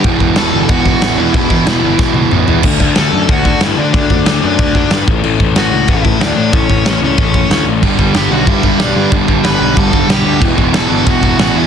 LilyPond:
<<
  \new Staff \with { instrumentName = "Lead electric guitar" } { \time 4/4 \key d \major \tempo 4 = 185 r4 <a' a''>4 <fis' fis''>4. <e' e''>8 | <e' e''>2. r4 | r4 <a' a''>4 <fis' fis''>4 <e' e''>8 <d' d''>8~ | <d' d''>4. <d' d''>2 r8 |
r4 <fis' fis''>4 <e' e''>4 <d' d''>4 | <cis' cis''>4. <cis' cis''>2 r8 | r4 <g' g''>8 <fis' fis''>8 <e' e''>4 <d' d''>4 | r4 <b' b''>4 <a' a''>4 <g' g''>4 |
r4 <a' a''>4 <fis' fis''>4 <fis' fis''>8 <e' e''>8 | }
  \new Staff \with { instrumentName = "Overdriven electric guitar" } { \clef bass \time 4/4 \key d \major <e, b, e>8 <e, b, e>8 <e, b, e>8 <e, b, e>8 <e, b, e>8 <e, b, e>8 <e, b, e>8 <e, b, e>8 | <e, b, e>8 <e, b, e>8 <e, b, e>8 <e, b, e>8 <e, b, e>8 <e, b, e>8 <e, b, e>8 <e, b, e>8 | <d a d'>8 <d a d'>8 <d a d'>8 <d a d'>8 <d a d'>8 <d a d'>8 <d a d'>8 <d a d'>8 | <d a d'>8 <d a d'>8 <d a d'>8 <d a d'>8 <d a d'>8 <d a d'>8 <d a d'>8 <a, e a>8 |
<a, e a>8 <a, e a>8 <a, e a>8 <a, e a>8 <a, e a>8 <a, e a>8 <a, e a>8 <a, e a>8 | <a, e a>8 <a, e a>8 <a, e a>8 <a, e a>8 <a, e a>8 <a, e a>8 <a, e a>8 <a, e a>8 | <g, d g>8 <g, d g>8 <g, d g>8 <g, d g>8 <g, d g>8 <g, d g>8 <g, d g>8 <g, d g>8 | <g, d g>8 <g, d g>8 <g, d g>8 <g, d g>8 <g, d g>8 <g, d g>8 <g, d g>8 <g, d g>8 |
<e, b, e>8 <e, b, e>8 <e, b, e>8 <e, b, e>8 <e, b, e>8 <e, b, e>8 <e, b, e>8 <e, b, e>8 | }
  \new Staff \with { instrumentName = "Overdriven electric guitar" } { \clef bass \time 4/4 \key d \major <e, b, e>8 <e, b, e>8 <e, b, e>8 <e, b, e>8 <e, b, e>8 <e, b, e>8 <e, b, e>8 <e, b, e>8 | <e, b, e>8 <e, b, e>8 <e, b, e>8 <e, b, e>8 <e, b, e>8 <e, b, e>8 <e, b, e>8 <e, b, e>8 | r1 | r1 |
r1 | r1 | <g, d g>8 <g, d g>8 <g, d g>8 <g, d g>8 <g, d g>8 <g, d g>8 <g, d g>8 <g, d g>8 | <g, d g>8 <g, d g>8 <g, d g>8 <g, d g>8 <g, d g>8 <g, d g>8 <g, d g>8 <g, d g>8 |
<e, b, e>8 <e, b, e>8 <e, b, e>8 <e, b, e>8 <e, b, e>8 <e, b, e>8 <e, b, e>8 <e, b, e>8 | }
  \new Staff \with { instrumentName = "Picked electric bass" } { \clef bass \time 4/4 \key d \major e,,8 e,,8 e,,8 g,,8 e,,4 a,,8 e,8 | e,,8 e,,8 e,,8 g,,8 e,,4 a,,8 e,8 | d,8 d,8 d,8 fis,8 d,4 g,8 d8 | d,8 d,8 d,8 fis,8 d,4 g,8 a,,8 |
a,,8 a,,8 a,,8 cis,8 a,,4 d,8 a,8 | a,,8 a,,8 a,,8 cis,8 a,,4 d,8 a,,8 | g,,8 g,,8 g,,8 b,,8 g,,4 b,,8 g,8 | g,,8 g,,8 g,,8 b,,8 g,,4 b,,8 d,8 |
e,,8 e,,8 e,,8 g,,8 e,,4 a,,8 e,8 | }
  \new DrumStaff \with { instrumentName = "Drums" } \drummode { \time 4/4 <cymc bd>8 bd8 <cymc sn>4 <cymc bd>8 bd8 <cymc sn>4 | <cymc bd>8 bd8 <cymc sn>4 <bd sn>8 tommh8 toml8 tomfh8 | <cymc bd>8 bd8 <cymc sn>4 <cymc bd>8 bd8 <cymc sn>4 | <cymc bd>8 bd8 <cymc sn>4 <cymc bd>8 bd8 <cymc sn>8 bd8 |
cymc8 bd8 <cymc sn>4 <cymc bd>8 bd8 <cymc sn>4 | <cymc bd>8 bd8 <cymc sn>4 <cymc bd>8 bd8 <cymc sn>4 | <cymc bd>8 bd8 <cymc sn>4 <cymc bd>8 bd8 <cymc sn>4 | <cymc bd>8 bd8 <cymc sn>4 <cymc bd>8 bd8 <cymc sn>4 |
<cymc bd>8 bd8 <cymc sn>4 <cymc bd>8 bd8 <cymc sn>4 | }
>>